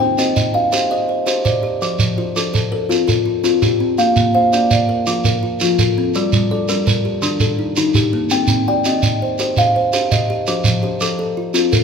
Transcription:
0.00 0.18 C4 medium
0.00 0.17 C5 medium
0.00 0.54 G5 medium
0.18 0.55 C4 medium
0.18 0.73 C5 medium
0.18 0.73 D#5 medium
0.18 shekere medium
0.36 0.53 D#5 medium
0.36 shekere medium
0.54 1.09 D#5 medium
0.54 1.09 F5 medium
0.72 1.09 G4 medium
0.72 1.09 C5 medium
0.72 shekere medium
0.91 1.08 C5 medium
0.91 1.45 D#5 medium
1.09 1.44 C5 medium
1.26 1.62 G4 medium
1.26 1.63 C5 medium
1.26 shekere medium
1.45 1.99 C5 medium
1.45 2.00 D5 medium
1.45 shekere medium
1.63 1.99 G4 medium
1.82 2.18 F3 medium
1.82 2.17 C5 medium
1.82 shekere medium
1.99 2.36 F3 medium
1.99 shekere medium
2.18 2.35 F4 medium
2.18 2.72 C5 medium
2.36 2.72 F3 medium
2.36 2.90 F4 medium
2.36 2.90 A4 medium
2.36 shekere medium
2.54 2.71 A4 medium
2.54 shekere medium
2.72 3.26 A4 medium
2.72 3.26 A#4 medium
2.89 3.26 C4 medium
2.89 3.26 F4 medium
2.89 shekere medium
3.08 3.24 F4 medium
3.08 3.62 A4 medium
3.08 shekere medium
3.26 3.61 F4 medium
3.44 3.79 C4 medium
3.44 3.80 F4 medium
3.44 shekere medium
3.62 4.17 F4 medium
3.62 4.17 G4 medium
3.62 shekere medium
3.80 4.17 C4 medium
3.98 4.35 A#3 medium
3.98 4.33 F5 medium
3.98 shekere medium
4.16 4.53 A#3 medium
4.16 shekere medium
4.34 4.89 C5 medium
4.34 4.89 F5 medium
4.53 4.89 A#3 medium
4.53 5.07 D5 medium
4.53 shekere medium
4.71 5.07 D5 medium
4.71 shekere medium
4.89 5.43 A#4 medium
5.07 5.43 F3 medium
5.07 5.25 F4 medium
5.07 shekere medium
5.25 5.79 A#4 medium
5.25 shekere medium
5.43 5.97 F4 medium
5.60 5.97 F3 medium
5.60 5.97 F4 medium
5.60 shekere medium
5.79 6.33 A4 medium
5.79 shekere medium
5.98 6.33 C4 medium
6.14 6.51 G3 medium
6.14 6.50 D5 medium
6.14 shekere medium
6.33 6.70 G3 medium
6.33 shekere medium
6.51 7.05 A4 medium
6.51 7.05 D5 medium
6.69 7.05 G3 medium
6.69 7.23 A#4 medium
6.69 shekere medium
6.87 7.23 A#4 medium
6.87 shekere medium
7.05 7.59 G4 medium
7.22 7.59 D#3 medium
7.22 7.41 D4 medium
7.22 shekere medium
7.40 7.95 A4 medium
7.40 shekere medium
7.59 8.13 D#4 medium
7.76 8.13 D#3 medium
7.76 8.13 D#4 medium
7.76 shekere medium
7.95 8.49 G4 medium
7.95 shekere medium
8.13 8.49 A#3 medium
8.30 8.67 C4 medium
8.30 8.67 G5 medium
8.30 shekere medium
8.47 8.85 C4 medium
8.47 shekere medium
8.68 9.21 D5 medium
8.68 9.21 G5 medium
8.85 9.21 C4 medium
8.85 9.39 D#5 medium
8.85 shekere medium
9.03 9.39 D#5 medium
9.03 shekere medium
9.22 9.75 C5 medium
9.39 9.75 G4 medium
9.39 9.75 C5 medium
9.39 shekere medium
9.57 10.10 D#5 medium
9.57 10.11 F5 medium
9.57 shekere medium
9.76 10.29 C5 medium
9.93 10.29 G4 medium
9.93 10.29 C5 medium
9.93 shekere medium
10.12 10.65 D#5 medium
10.12 shekere medium
10.30 10.65 G4 medium
10.47 10.83 F3 medium
10.47 10.83 C5 medium
10.47 shekere medium
10.64 11.01 F3 medium
10.64 shekere medium
10.83 11.36 G4 medium
10.83 11.37 C5 medium
11.01 11.36 F3 medium
11.01 11.55 A4 medium
11.01 shekere medium
11.19 11.54 A4 medium
11.37 11.84 F4 medium
11.54 11.84 C4 medium
11.54 11.84 F4 medium
11.54 shekere medium
11.72 11.84 A4 medium
11.72 11.84 A#4 medium
11.72 shekere medium

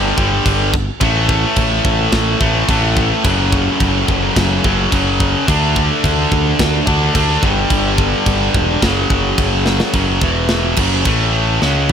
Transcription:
0.00 0.11 G1 loud
0.00 0.16 G2 medium
0.00 0.17 D3 medium
0.00 0.16 G3 medium
0.17 0.39 G1 medium
0.17 0.73 G2 medium
0.17 0.72 D3 medium
0.17 0.72 G3 medium
0.17 kick medium
0.46 0.89 G1 medium
0.46 kick medium
0.46 crash medium
0.74 kick medium
1.00 1.44 A1 loud
1.00 2.39 A2 loud
1.00 2.39 E3 loud
1.00 2.40 A3 loud
1.00 kick medium
1.00 crash medium
1.29 kick medium
1.56 1.79 A1 medium
1.56 kick medium
1.56 crash medium
1.85 2.06 A1 medium
1.85 kick medium
2.12 2.34 A1 loud
2.12 kick medium
2.12 snare loud
2.12 crash medium
2.41 2.62 A1 medium
2.41 2.67 A2 medium
2.41 2.68 E3 medium
2.41 2.70 A3 loud
2.41 kick medium
2.68 3.11 A1 medium
2.68 3.23 A2 medium
2.68 3.23 E3 medium
2.68 5.49 A3 medium
2.68 kick medium
2.68 crash medium
2.97 kick loud
3.24 3.68 F#1 loud
3.24 4.62 F#2 loud
3.24 4.63 C#3 loud
3.24 4.63 F#3 loud
3.24 kick loud
3.24 crash medium
3.52 kick medium
3.80 4.02 F#1 medium
3.80 kick medium
3.80 crash medium
4.08 4.30 F#1 medium
4.08 kick medium
4.36 4.58 F#1 loud
4.36 kick medium
4.36 snare loud
4.36 crash medium
4.64 4.86 F#1 loud
4.64 4.90 F#2 medium
4.64 4.91 C#3 medium
4.64 4.90 F#3 medium
4.64 kick medium
4.91 5.35 F#1 medium
4.91 5.46 F#2 medium
4.91 5.46 C#3 medium
4.91 5.47 F#3 medium
4.91 kick medium
4.91 crash medium
5.20 kick medium
5.47 5.90 D2 loud
5.47 6.85 D3 loud
5.47 6.86 A3 loud
5.47 6.85 D4 loud
5.47 kick loud
5.47 crash medium
5.76 kick medium
6.04 6.25 D2 medium
6.04 kick medium
6.04 crash medium
6.32 6.53 D2 medium
6.32 kick medium
6.59 6.81 D2 loud
6.59 kick medium
6.59 snare loud
6.59 crash medium
6.86 7.09 D2 loud
6.86 7.13 D3 medium
6.86 7.14 A3 medium
6.86 7.13 D4 medium
6.86 kick medium
7.14 7.37 D2 medium
7.14 7.41 D3 medium
7.14 7.42 A3 medium
7.14 7.42 D4 medium
7.14 kick medium
7.14 crash medium
7.42 7.64 G1 loud
7.42 8.80 G2 medium
7.42 8.81 D3 loud
7.42 8.82 G3 loud
7.42 kick loud
7.70 8.13 G1 loud
7.70 kick medium
7.70 crash medium
7.98 kick medium
8.26 8.48 G1 medium
8.26 kick medium
8.26 crash medium
8.54 8.76 E1 medium
8.54 kick medium
8.82 9.04 F#1 loud
8.82 9.92 F#2 loud
8.82 9.93 C#3 loud
8.82 9.93 F#3 loud
8.82 kick medium
8.82 snare loud
8.82 crash medium
9.10 9.32 F#1 loud
9.10 kick loud
9.38 9.81 F#1 medium
9.38 kick loud
9.38 crash medium
9.66 snare medium
9.80 snare loud
9.93 10.20 F#1 medium
9.93 10.22 F#2 loud
9.93 10.22 C#3 loud
9.93 10.22 F#3 loud
9.93 kick loud
9.93 crash medium
10.21 10.74 E1 loud
10.21 10.77 E2 medium
10.21 10.78 B2 medium
10.21 10.78 E3 loud
10.21 kick loud
10.48 snare loud
10.48 crash medium
10.77 11.04 F#1 medium
10.77 11.06 F#2 loud
10.77 11.05 C#3 medium
10.77 11.06 F#3 loud
10.77 kick loud
10.77 crash loud
11.05 11.58 A1 loud
11.05 11.61 A2 loud
11.05 11.61 E3 medium
11.05 11.61 A3 loud
11.05 kick loud
11.05 crash medium
11.62 11.88 C#2 medium
11.62 11.89 C#3 medium
11.62 11.89 G#3 loud
11.62 11.90 C#4 loud
11.62 snare medium

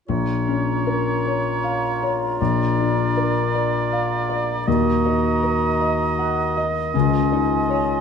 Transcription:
0.08 2.36 A#1 soft
0.08 2.39 A#2 soft
0.08 4.63 F4 soft
0.08 2.36 C#5 soft
0.08 4.64 A#5 soft
0.47 2.43 C#4 soft
0.47 1.09 C#4 soft
0.86 3.15 A#4 soft
0.86 1.48 A#4 soft
1.25 2.01 C#5 soft
1.25 1.87 C#5 soft
1.63 3.91 F5 soft
1.63 2.25 F5 soft
2.02 2.43 C#5 soft
2.02 2.40 C#5 soft
2.41 4.64 A#1 soft
2.41 4.70 A#2 soft
2.41 4.69 D5 soft
2.78 4.70 D4 soft
2.78 3.39 D4 soft
3.16 5.41 A#4 soft
3.16 3.77 A#4 soft
3.54 4.28 D5 soft
3.54 4.14 D5 soft
3.92 4.70 F5 soft
3.92 4.52 F5 soft
4.29 4.67 D5 soft
4.29 4.70 D5 soft
4.67 6.91 D#2 soft
4.67 6.98 D#3 soft
4.67 6.63 F#4 soft
4.67 8.01 D#5 soft
4.67 6.63 A#5 soft
5.05 7.31 D#4 soft
5.05 5.65 D#4 soft
5.42 6.97 A#4 soft
5.42 6.03 A#4 soft
5.81 6.41 D#5 soft
5.81 6.56 D#5 soft
6.19 6.97 F#5 soft
6.19 6.79 F#5 soft
6.57 8.01 D#5 soft
6.57 6.95 D#5 soft
6.94 8.01 C#2 soft
6.94 8.01 C#3 soft
6.94 8.01 F4 soft
6.94 8.01 G#5 medium
7.32 7.92 D#4 soft
7.32 8.01 D#4 soft
7.69 8.01 C#5 soft

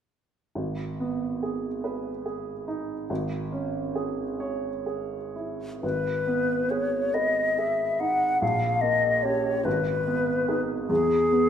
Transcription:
0.55 3.05 G#1 soft
1.00 1.68 B3 soft
1.43 2.09 G#4 soft
1.84 2.50 B4 soft
2.26 2.93 G#4 soft
2.68 3.10 D#4 soft
3.10 5.79 G#1 soft
3.52 4.22 C#4 soft
3.95 4.68 G#4 soft
4.40 5.16 C#5 soft
4.86 5.65 G#4 soft
5.36 5.83 E4 soft
5.83 8.38 G#1 soft
5.83 6.72 B4 soft
6.27 6.97 B3 soft
6.70 7.41 G#4 soft
6.70 7.15 C#5 soft
7.14 7.84 B4 soft
7.14 7.60 D#5 soft
7.58 8.25 G#4 soft
7.58 8.02 E5 soft
8.00 8.41 D#4 soft
8.00 8.41 F#5 soft
8.41 9.62 A#1 soft
8.41 8.83 F5 soft
8.81 9.49 A#3 soft
8.81 9.25 D#5 soft
9.23 9.62 C#4 soft
9.23 9.62 G4 soft
9.23 9.66 C#5 soft
9.65 10.86 G#1 soft
9.65 10.62 B4 soft
10.07 10.73 B3 soft
10.48 10.86 D#4 soft
10.48 10.86 G#4 soft
10.89 11.49 E2 soft
10.89 11.49 G#4 medium
11.32 11.49 B3 soft

